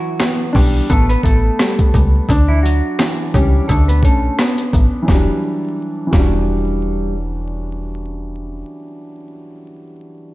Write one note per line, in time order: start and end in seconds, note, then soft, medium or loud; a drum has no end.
0.00 0.89 E3 medium
0.00 0.52 F#3 medium
0.00 0.51 F#4 medium
0.20 0.88 B3 medium
0.20 cross-stick medium
0.20 snare loud
0.20 closed hi-hat loud
0.53 0.81 B1 loud
0.53 0.87 G3 medium
0.53 0.88 D4 medium
0.53 0.86 G4 medium
0.53 kick loud
0.53 open hi-hat medium
0.89 1.16 A1 loud
0.89 1.07 A3 medium
0.89 2.29 B3 medium
0.89 1.07 A4 medium
0.89 kick medium
0.89 closed hi-hat medium
1.09 1.23 B3 medium
1.09 1.23 B4 medium
1.09 closed hi-hat medium
1.23 1.50 A1 loud
1.23 2.29 A3 medium
1.23 2.25 A3 medium
1.23 2.25 A4 medium
1.23 kick medium
1.23 closed hi-hat medium
1.59 2.29 G3 medium
1.59 cross-stick medium
1.59 snare loud
1.59 closed hi-hat medium
1.79 kick medium
1.79 closed hi-hat medium
1.94 2.21 C#2 medium
1.94 kick loud
1.94 closed hi-hat medium
2.29 2.82 D2 loud
2.29 3.68 D4 loud
2.29 kick loud
2.29 closed hi-hat loud
2.48 2.63 E3 medium
2.48 2.62 E4 medium
2.63 3.30 F#3 medium
2.63 3.29 F#4 medium
2.63 closed hi-hat medium
2.99 3.69 E3 medium
2.99 cross-stick loud
2.99 snare loud
2.99 closed hi-hat loud
3.34 3.60 C#2 loud
3.34 3.66 G3 medium
3.34 3.69 C#4 medium
3.34 3.65 G4 medium
3.34 kick loud
3.34 closed hi-hat medium
3.68 4.04 D2 loud
3.68 3.86 A3 medium
3.68 5.09 D4 medium
3.68 3.86 A4 medium
3.68 kick medium
3.68 closed hi-hat medium
3.88 4.02 B3 medium
3.88 4.02 B4 medium
3.88 closed hi-hat medium
4.03 4.29 B1 medium
4.03 4.36 A3 medium
4.03 5.08 C#4 medium
4.03 4.35 A4 medium
4.03 kick medium
4.03 closed hi-hat medium
4.39 5.09 B3 medium
4.39 cross-stick medium
4.39 snare loud
4.39 closed hi-hat medium
4.58 closed hi-hat medium
4.73 4.88 A1 medium
4.73 kick loud
4.73 closed hi-hat medium
5.02 5.26 E3 medium
5.02 5.28 F#3 medium
5.08 5.29 E1 loud
5.08 5.29 G3 medium
5.08 5.30 G3 medium
5.08 kick loud
5.08 snare medium
5.14 5.32 D4 medium
6.07 9.30 E3 medium
6.11 8.63 E1 loud
6.11 7.13 G3 medium
6.11 9.34 G3 medium
6.11 9.32 F#4 medium
6.11 kick loud
6.11 snare medium
6.19 9.36 D4 medium